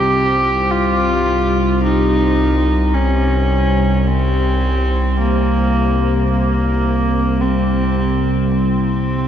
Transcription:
Already playing: synth drone C2, ambient pad G3 G4 C5 G5, horsehead fiddle G4
0.71 horsehead fiddle F4
1.83 horsehead fiddle D#4
2.94 horsehead fiddle C#4
4.07 horsehead fiddle C4
5.19 horsehead fiddle A#3
6.30 horsehead fiddle A#3
7.42 horsehead fiddle C4
8.54 horsehead fiddle C4

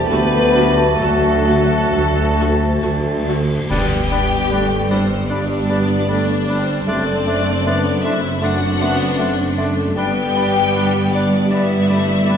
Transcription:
Already playing: trombone section A3, oboe A5
0.06 tuba D2, double bass section D2, cello section D2, trombone section F#3, bassoon A3, viola section A3 F#4, french horn section B3, clarinet F#4, flute G4, violin section B4 A5
0.55 viola section A3 F#4, violin section A5
1.00 tuba D2, double bass section D2, cello section D2, french horn section A3, viola section A3 F#4, flute F#4, violin section A4 A5
1.47 viola section A3 F#4, violin section A5
1.92 tuba D2, double bass section D2, cello section D2, viola section A3 F#4, violin section A5
2.37 viola section A3 F#4, violin section A5
2.82 tuba D2, double bass section D2, cello section D2, viola section A3 F#4, violin section A5
3.27 viola section A3 F#4, violin section A5
3.69 double bass section G1, cello section G2, viola section G3 B3, bassoon G3, french horn section G3 B3, clarinet D4, violin section G4 G5, oboe D5, flute B5, concert bass drum, crash
4.10 bassoon G3, viola section B3, clarinet D4, oboe D5, flute B5
4.50 bassoon G3, viola section A3, clarinet D4, oboe D5, flute B5
4.90 viola section G3, bassoon G3, violin section C4 C5, clarinet D4, oboe D5, flute B5
5.28 viola section G3 D4, bassoon G3, french horn section G3 B3, clarinet D4, violin section D4 D5, oboe D5, flute B5
5.69 bassoon G3, viola section B3, clarinet D4, oboe D5, flute B5
6.08 bassoon G3, viola section A3 D4, clarinet D4, oboe D5, flute B5
6.47 viola section G3, bassoon G3, violin section C4 C5, clarinet D4, oboe D5, flute B5
6.87 double bass section F#1, cello section F#2, bassoon A3, viola section A3 C4, french horn section A3 C4, clarinet D4, violin section D4 D5, oboe D5, flute C6
7.26 viola section A3, bassoon A3, clarinet D4, oboe D5, flute C6
7.66 bassoon A3, viola section B3, clarinet D4, oboe D5, flute C6
8.02 viola section A3, bassoon A3, clarinet D4, violin section E4 E5, oboe D5, flute C6
8.40 viola section A3 D4, bassoon A3, clarinet D4, oboe D5, violin section F#5, flute C6
8.44 french horn section A3 C4, violin section F#4
8.80 bassoon A3, viola section B3, clarinet D4, oboe D5, flute C6
9.17 viola section A3, bassoon A3, clarinet D4, oboe D5, flute C6
9.58 bassoon A3, clarinet D4, oboe D5, flute C6
9.95 double bass section G1, cello section G2, viola section G3 B3, bassoon G3, french horn section B3, clarinet D4, violin section G4 G5, oboe D5, flute B5
10.00 french horn section G3
10.35 bassoon G3, clarinet D4, oboe D5, flute B5
10.75 bassoon G3, clarinet D4, oboe D5, flute B5
11.13 bassoon G3, violin section D4 D5, clarinet D4, oboe D5, flute B5
11.51 viola section G3 B3, bassoon G3, clarinet D4, violin section E4 E5, oboe D5, flute B5
11.88 bassoon G3, viola section A3, clarinet D4, oboe D5, flute B5
12.26 viola section G3, bassoon G3, clarinet D4, oboe D5, flute B5

